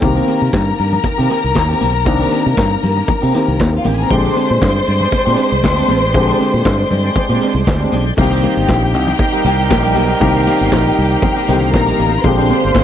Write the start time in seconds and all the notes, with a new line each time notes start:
0.01 C2 D#3 A#3 C4 G4 A#4 A#5, muted clean electric guitar stroke, kick, closed hi-hat
0.16 D#3 A#3 C4 G4
0.28 D#3 A#3 C4 G4, open hi-hat, muted conga
0.41 C3, muted clean electric guitar stroke
0.53 G2, muted clean electric guitar stroke, kick, snare, clap, closed hi-hat, high conga
0.67 muted clean electric guitar stroke
0.78 G2, open hi-hat
0.93 muted clean electric guitar stroke, low conga
1.04 muted fingered electric bass stroke, muted clean electric guitar stroke, kick, closed hi-hat, muted conga
1.18 C3 D#3 A#3 C4 G4
1.30 D#3 A#3 C4 G4, open hi-hat, muted conga
1.43 C2, muted clean electric guitar stroke
1.55 D#2, muted clean electric guitar stroke, kick, snare, clap, closed hi-hat, high conga
1.69 D#3 A#3 C4 G4
1.80 B1 D#3 A#3 C4 G4, open hi-hat, high conga
1.94 muted clean electric guitar stroke
2.05 C2 D#3 A#3 C4 D4, muted clean electric guitar stroke, kick, closed hi-hat
2.20 D#3 A#3 C4 G4
2.32 D#3 A#3 C4 G4, open hi-hat, muted conga
2.45 C3, muted clean electric guitar stroke
2.57 G2, muted clean electric guitar stroke, kick, snare, clap, closed hi-hat, high conga
2.70 muted clean electric guitar stroke
2.83 G2, open hi-hat, low conga
2.96 muted clean electric guitar stroke
3.08 muted clean electric guitar stroke, kick, closed hi-hat, muted conga, low conga
3.22 C3 D#3 A#3 C4 G4
3.34 D#3 A#3 C4 G4, open hi-hat
3.48 C2, muted clean electric guitar stroke
3.59 D#2, muted clean electric guitar stroke, kick, snare, clap, closed hi-hat, high conga
3.73 F4, muted clean electric guitar stroke
3.77 F5
3.85 A1 D#3 A#3 C4 G4 G5, open hi-hat, high conga
3.94 G#4 G#5
3.99 D#3 A#3 C4 G4 A#4 A#5
4.10 A#1 D3 G#3 C4 G4 C5 D5 G5 C6, muted clean electric guitar stroke, kick, closed hi-hat
4.24 G#3 C4 D4 G4
4.36 G#3 C4 D4 G4, open hi-hat, muted conga
4.50 A#2, muted clean electric guitar stroke
4.61 G2, muted clean electric guitar stroke, kick, snare, clap, closed hi-hat, high conga
4.75 muted clean electric guitar stroke
4.87 G2, open hi-hat
5.00 muted clean electric guitar stroke, low conga
5.12 muted clean electric guitar stroke, muted fingered electric bass stroke, kick, closed hi-hat, muted conga
5.25 A#2 G#3 C4 D4 G4
5.37 G#3 C4 D4 G4, open hi-hat
5.51 C2, muted clean electric guitar stroke
5.63 D2, muted clean electric guitar stroke, kick, snare, clap, closed hi-hat, high conga
5.76 G#3 C4 D4 G4
5.88 A1 G#3 C4 D4 G4, open hi-hat, high conga
6.01 muted clean electric guitar stroke
6.13 A#1 D3 G#3 C4 G4, muted clean electric guitar stroke, kick, closed hi-hat
6.27 G#3 C4 D4 G4
6.38 G#3 C4 D4 G4, open hi-hat, muted conga
6.53 A#2, muted clean electric guitar stroke
6.65 G2, muted clean electric guitar stroke, kick, snare, clap, closed hi-hat, high conga
6.78 muted clean electric guitar stroke
6.90 G2, open hi-hat, low conga
7.03 muted clean electric guitar stroke
7.16 muted clean electric guitar stroke, muted fingered electric bass stroke, kick, closed hi-hat, muted conga, low conga
7.29 A#2 G#3 C4 D4 G4
7.41 G#3 C4 D4 G4, open hi-hat, muted conga
7.55 C2, muted clean electric guitar stroke
7.67 D2, muted clean electric guitar stroke, kick, snare, clap, closed hi-hat, high conga
7.80 G#3 C4 D4 G4
7.92 B1 G#3 C4 D4 G4, open hi-hat, high conga
8.05 muted clean electric guitar stroke
8.17 C2 D#3 G3 A#3 C4 D#4 G4 C5 G5 A#5, muted clean electric guitar stroke, kick, crash
8.31 G3 A#3 D#4 G4
8.43 G3 A#3 D#4 G4, open hi-hat, muted conga
8.56 G1, muted clean electric guitar stroke
8.68 A#1, muted clean electric guitar stroke, kick, snare, clap, closed hi-hat, high conga
8.82 muted clean electric guitar stroke
8.94 C2, open hi-hat
9.07 muted clean electric guitar stroke, low conga
9.19 G3 D#4 A#4, muted clean electric guitar stroke, kick, closed hi-hat, muted conga
9.32 G3 A#3 D#4 G4
9.44 C2 G3 A#3 D#4 G4, open hi-hat, muted conga
9.57 muted clean electric guitar stroke
9.69 A#1, muted clean electric guitar stroke, kick, snare, clap, closed hi-hat, high conga
9.83 G3 A#3 D#4 G4
9.95 B1 G3 A#3 D#4 G4, open hi-hat, high conga
10.08 muted clean electric guitar stroke
10.20 C2 D#3 G3 A#3 C4 G4 F5, muted clean electric guitar stroke, kick, closed hi-hat
10.34 G3 A#3 D#4 G4
10.46 G3 A#3 D#4 G4, open hi-hat, muted conga
10.60 G1, muted clean electric guitar stroke
10.72 A#1, muted clean electric guitar stroke, kick, snare, clap, closed hi-hat, high conga
10.86 muted clean electric guitar stroke
10.98 C2, open hi-hat
11.10 muted clean electric guitar stroke
11.22 muted clean electric guitar stroke, kick, closed hi-hat, muted conga, low conga
11.36 G3 A#3 D#4 G4
11.48 C2 D3 G3 A#3 C4 D#4 G4, open hi-hat, muted conga
11.54 D#3
11.61 muted clean electric guitar stroke
11.73 A#1 A#4 A#5, muted clean electric guitar stroke, kick, snare, clap, closed hi-hat, high conga
11.86 G3 A#3 D#4 G4
11.98 A1 G3 A#3 D#4 G4, open hi-hat, high conga
12.12 muted clean electric guitar stroke
12.24 A#1 D3 G#3 A#3 C4 D4 G4 C5 F5 G5 C6, muted clean electric guitar stroke, kick, closed hi-hat
12.37 G#3 C4 D4 G4
12.49 G#3 C4 D4 G4, open hi-hat, muted conga
12.62 G1, muted clean electric guitar stroke
12.74 G#1, muted clean electric guitar stroke, kick, snare, clap, closed hi-hat, high conga